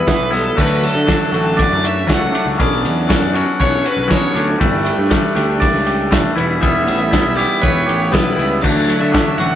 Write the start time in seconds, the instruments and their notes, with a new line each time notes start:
Already playing: clean electric guitar G3 B3 E4
0.07 clean electric guitar E3 B3 E4, overdriven electric guitar B4, kick, snare, closed hi-hat, shaker
0.19 picked electric bass B1
0.31 clean electric guitar E3 G3 B3 E4, overdriven electric guitar A4, closed hi-hat, shaker
0.55 picked electric bass D2, clean electric guitar D3 F#3 A3 D4, kick, crash, shaker
0.60 overdriven electric guitar B4
0.82 clean electric guitar F#3, overdriven electric guitar A4, ride
0.95 picked electric bass D3
1.06 clean electric guitar F#3 A3 D4, kick, snare, ride, shaker
1.31 picked electric bass A1, clean electric guitar A3 D4 F#4, ride, shaker
1.57 clean electric guitar D5, kick, ride, shaker
1.61 overdriven electric guitar D5
1.70 picked electric bass F#2
1.84 clean electric guitar F#4, overdriven electric guitar E5, ride, shaker
2.07 picked electric bass C#2, clean electric guitar F#3 A3 D4, kick, snare, ride, shaker
2.12 overdriven electric guitar F#5
2.32 clean electric guitar A3 D4, ride, shaker
2.46 picked electric bass C#2
2.58 picked electric bass B1, clean electric guitar F#3 B3 C#4 D4, overdriven electric guitar D5, kick, ride, shaker
2.84 picked electric bass E2, ride, shaker
3.07 clean electric guitar F#3 C#4 D4, kick, snare, ride, shaker
3.22 picked electric bass F#2
3.33 clean electric guitar C#4 D4 F#4, ride, shaker
3.60 picked electric bass B1, clean electric guitar C#5, overdriven electric guitar C#5, kick, ride, shaker
3.85 clean electric guitar F#4, overdriven electric guitar B4, ride, shaker
3.97 picked electric bass B1
4.08 clean electric guitar F#3 B3 C#4 D4, overdriven electric guitar C#5, kick, snare, ride, shaker
4.34 picked electric bass D2, clean electric guitar C#4 D4, ride, shaker
4.59 picked electric bass G1, clean electric guitar G3 A3 D4, kick, ride, shaker
4.85 clean electric guitar A3, ride, shaker
4.98 picked electric bass G2
5.10 clean electric guitar G3 A3 D4, kick, snare, ride, shaker
5.35 picked electric bass D2, clean electric guitar A3 D4 G4, snare, ride, shaker
5.60 clean electric guitar D5, kick, ride, shaker
5.74 picked electric bass C#2
5.86 clean electric guitar G4, ride, shaker
6.11 picked electric bass E1, clean electric guitar G3 A3 D4, kick, snare, ride, shaker
6.35 picked electric bass E1, clean electric guitar E3 G3 B3 E4, ride, shaker
6.60 clean electric guitar E3 G3 B3 E4, overdriven electric guitar E5, kick, ride, shaker
6.87 picked electric bass A1, clean electric guitar B3, ride, shaker
6.99 overdriven electric guitar E5
7.11 clean electric guitar G3 B3 E4, kick, snare, ride, shaker
7.24 picked electric bass B1
7.36 clean electric guitar B3 E4 G4, overdriven electric guitar D5, ride, shaker
7.62 picked electric bass E1, clean electric guitar B4, overdriven electric guitar C#5, kick, ride, shaker
7.86 picked electric bass A1, clean electric guitar G4, ride, shaker
8.12 picked electric bass B1, clean electric guitar G3 B3 E4, overdriven electric guitar B4, kick, snare, ride, shaker
8.36 picked electric bass C#2, clean electric guitar B3 E4, ride, shaker
8.62 picked electric bass D2, clean electric guitar D3 F#3 A3 D4, overdriven electric guitar D5, kick, crash, shaker
8.87 clean electric guitar F#3, ride, shaker
9.01 picked electric bass D3, overdriven electric guitar E5
9.12 clean electric guitar F#3 A3 D4, kick, snare, ride, shaker
9.38 picked electric bass A1, clean electric guitar A3 D4 F#4, overdriven electric guitar F#5, snare, ride, shaker